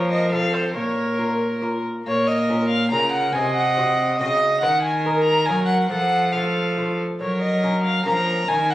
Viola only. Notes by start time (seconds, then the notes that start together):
Already playing: A#4
0.32 A4
0.75 A#4
2.06 A#4
2.93 A#4
3.35 D#5
4.20 D#5
4.62 A#4
5.90 A4
6.35 A4
7.21 A#4
8.05 A#4
8.49 A#4